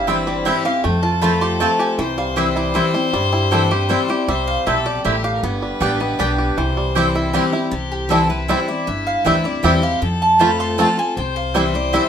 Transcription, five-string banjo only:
0.00 0.27 C4 medium
0.00 0.42 E4 medium
0.08 0.61 G3 medium
0.27 1.67 C4 medium
0.46 0.84 E4 medium
0.65 0.84 E3 medium
0.84 1.21 A3 medium
1.03 1.57 F4 medium
1.22 1.59 A3 medium
1.42 1.78 G4 medium
1.60 1.99 A3 medium
1.79 1.99 G4 medium
1.99 3.39 E3 medium
2.18 2.75 G3 medium
2.37 3.71 G4 medium
2.56 2.94 E4 medium
2.75 3.13 G3 medium
2.94 3.31 E4 medium
3.13 3.51 G3 medium
3.33 3.86 E4 medium
3.52 3.90 G3 medium
3.71 4.09 G4 medium
3.91 4.28 G3 medium
4.10 4.86 G4 medium
4.28 4.66 G3 medium
4.67 5.05 G3 medium
4.86 5.24 G4 medium
5.05 5.62 G3 medium
5.24 5.81 G4 medium
5.44 5.97 B3 medium
5.62 6.77 G3 medium
5.82 6.38 G4 medium
6.01 6.54 B3 medium
6.19 6.58 D4 medium
6.38 6.96 G4 medium
6.58 7.12 E3 medium
6.77 7.31 G3 medium
6.96 7.50 G4 medium
7.15 7.52 E4 medium
7.34 7.73 G3 medium
7.53 7.73 E4 medium
8.11 8.20 G3 medium
8.11 8.20 C4 medium
8.11 8.20 E4 medium
8.50 8.58 G3 medium
8.50 8.58 C4 medium
8.50 8.58 E4 medium
9.26 9.35 G3 medium
9.26 9.35 C4 medium
9.26 9.35 E4 medium
9.65 9.73 G3 medium
9.65 9.73 C4 medium
9.65 9.73 E4 medium
10.41 10.49 A3 medium
10.41 10.49 C4 medium
10.41 10.49 F4 medium
10.79 10.87 A3 medium
10.79 10.88 C4 medium
10.79 10.88 F4 medium
11.55 11.64 G3 medium
11.55 11.64 C4 medium
11.55 11.64 E4 medium
11.94 12.02 G3 medium
11.94 12.02 C4 medium
11.94 12.02 E4 medium

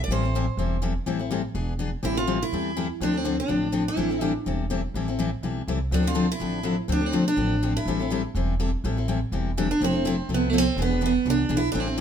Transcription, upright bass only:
0.08 0.47 A1 medium
0.57 0.96 E1 medium
1.06 1.45 A1 medium
1.54 1.93 E1 medium
2.03 2.42 A1 medium
2.52 2.91 E2 medium
3.00 3.39 D2 medium
3.50 3.88 A1 medium
3.96 4.36 A1 medium
4.46 4.85 E1 medium
4.94 5.33 A1 medium
5.43 5.64 B1 medium
5.67 5.88 C2 medium
5.91 6.30 D2 medium
6.40 6.79 A1 medium
6.88 7.27 D2 medium
7.37 7.76 A1 medium
7.86 8.25 A1 medium
8.35 8.74 E1 medium
8.84 9.23 A1 medium
9.32 9.71 E1 medium
9.81 10.20 F1 medium
10.29 10.68 C2 medium
10.76 11.16 E1 medium
11.25 11.46 C2 medium
11.50 11.71 B1 medium
11.74 12.01 A1 medium

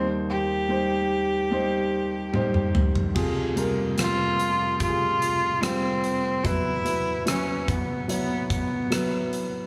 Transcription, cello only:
0.30 2.72 G4 medium
4.00 4.77 F4 medium
4.81 5.65 F4 medium
5.63 6.47 C4 medium
6.45 7.27 E4 medium
7.27 7.70 C#4 medium
7.69 8.10 B3 medium
8.10 8.48 B3 medium
8.51 9.29 B3 medium

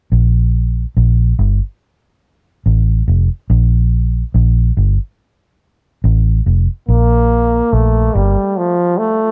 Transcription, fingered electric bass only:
0.12 0.84 A#1 medium
0.97 1.32 A#1 medium
1.39 1.59 G1 medium
2.66 3.01 A1 medium
3.08 3.28 F1 medium
3.50 4.22 A#1 loud
4.34 4.70 A#1 medium
4.77 4.97 G1 medium
6.04 6.40 A1 loud
6.46 6.66 F1 medium
6.88 7.61 A#1 medium
7.73 8.09 A#1 medium
8.15 8.35 G1 medium

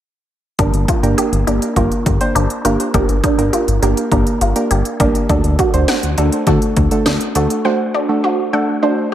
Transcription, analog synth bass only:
0.59 0.71 G1 loud
0.74 0.86 G1 medium
1.03 1.15 G1 medium
1.32 1.45 G1 loud
1.47 1.59 G1 medium
1.76 1.89 G1 loud
2.06 2.18 G1 medium
2.35 2.47 G1 medium
2.65 2.77 G1 medium
2.94 3.06 G1 loud
3.09 3.21 G1 medium
3.38 3.50 G1 medium
3.68 3.80 G1 medium
3.82 3.94 G1 medium
4.12 4.24 G1 loud
4.41 4.53 G1 loud
4.71 4.83 G1 loud
5.00 5.12 G1 medium
5.29 5.42 D2 loud
5.44 5.56 D2 medium
5.74 5.86 D2 medium
6.03 6.15 D2 medium
6.18 6.30 D2 medium
6.47 6.59 D2 loud
6.77 6.89 D2 medium
7.06 7.18 D2 medium
7.35 7.47 D2 loud

